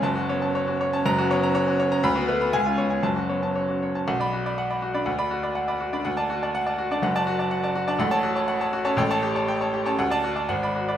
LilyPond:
<<
  \new Staff \with { instrumentName = "Grand piano" } { \time 2/4 \key fis \minor \tempo 4 = 121 << { a''8 r4. | ais''8 r4. | b''8 r8 gis''8 r8 | a''8 r4. |
\key b \minor r16 b''16 r4. | r16 b''16 r4. | r16 a''16 r4. | r16 a''16 r4. |
\key fis \minor r16 a''16 r4. | r16 a''16 r4. | r16 a''16 r8. b''16 r8 | } \\ { r16 fis'16 cis''16 a''16 cis''16 fis'16 cis''16 a''16 | r16 fis'16 cis''16 ais''16 cis''16 fis'16 cis''16 ais''16 | r16 fis'16 b'16 b''16 r16 eis'16 cis''16 gis''16 | r16 fis'16 cis''16 a''16 cis''16 fis'16 cis''16 a''16 |
fis''16 d''16 fis'16 <d'' b''>16 fis''16 <d'' b''>16 fis'16 <d'' b''>16 | fis''16 d''16 fis'16 <d'' b''>16 fis''16 <d'' b''>16 fis'16 <d'' b''>16 | fis''16 d''16 fis'16 <d'' a''>16 fis''16 <d'' a''>16 fis'16 <d'' a''>16 | fis''16 d''16 fis'16 <d'' a''>16 fis''16 <d'' a''>16 fis'16 <d'' a''>16 |
fis''16 cis''16 fis'16 <cis'' a''>16 fis''16 <cis'' a''>16 fis'16 <cis'' a''>16 | g''16 cis''16 g'16 <cis'' a''>16 g''16 <cis'' a''>16 g'16 <cis'' a''>16 | fis''16 d''16 fis'16 <d'' a''>16 fis''16 d''16 fis'16 <d'' b''>16 | } >> }
  \new Staff \with { instrumentName = "Grand piano" } { \time 2/4 \key fis \minor <fis,, fis,>16 cis'16 b16 cis'8 cis'8 cis'16 | <fis,, fis,>16 cis'16 b16 cis'8 cis'8 cis'16 | d,16 b16 a16 b16 cis,16 cis'16 b16 cis'16 | <fis,, fis,>16 cis'16 b16 cis'8 cis'8 cis'16 |
\key b \minor b,,4.~ b,,16 d'16 | d,4.~ d,16 d'16 | d,4.~ d,16 d'16 | <fis,, fis,>4.~ <fis,, fis,>16 d'16 |
\key fis \minor <a,, a,>4.~ <a,, a,>16 cis'16 | <a,, a,>4.~ <a,, a,>16 cis'16 | d,4 gis,,4 | }
>>